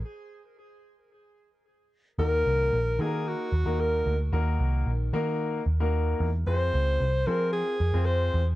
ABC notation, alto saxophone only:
X:1
M:4/4
L:1/16
Q:1/4=112
K:Ebdor
V:1 name="Alto saxophone"
z16 | B6 A2 G4 B3 z | z16 | c6 B2 A4 c3 z |]